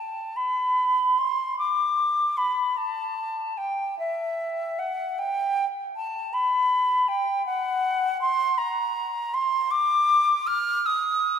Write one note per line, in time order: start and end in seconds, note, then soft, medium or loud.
0.00 0.38 A5 medium
0.36 1.20 B5 medium
1.18 1.58 C6 medium
1.58 2.39 D6 medium
2.37 2.78 B5 medium
2.77 3.59 A5 medium
3.57 3.98 G5 medium
3.99 4.80 E5 medium
4.79 5.20 F#5 medium
5.18 5.65 G5 medium
5.96 6.35 A5 medium
6.33 7.10 B5 medium
7.08 7.45 G5 medium
7.46 8.20 F#5 medium
8.21 8.59 C6 medium
8.58 9.36 A#5 medium
9.34 9.72 C6 medium
9.71 10.48 D6 loud
10.47 10.87 F6 medium
10.86 11.39 D#6 medium